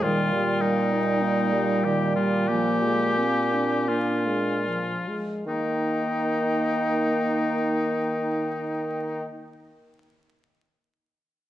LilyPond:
<<
  \new Staff \with { instrumentName = "Flute" } { \time 4/4 \key ees \major \tempo 4 = 40 g''2 aes''4. r8 | g''1 | }
  \new Staff \with { instrumentName = "Oboe" } { \time 4/4 \key ees \major f'8 ees'4 g'16 f'16 g'4 f'4 | ees'1 | }
  \new Staff \with { instrumentName = "Clarinet" } { \time 4/4 \key ees \major g2 bes8 c'8 d'8 r8 | ees'1 | }
  \new Staff \with { instrumentName = "French horn" } { \clef bass \time 4/4 \key ees \major ees16 g16 bes16 ees'16 bes16 g16 ees16 g16 f16 aes16 bes16 d'16 bes16 aes16 f16 aes16 | bes1 | }
  \new Staff \with { instrumentName = "Bassoon" } { \clef bass \time 4/4 \key ees \major bes,2.~ bes,8 r8 | ees1 | }
>>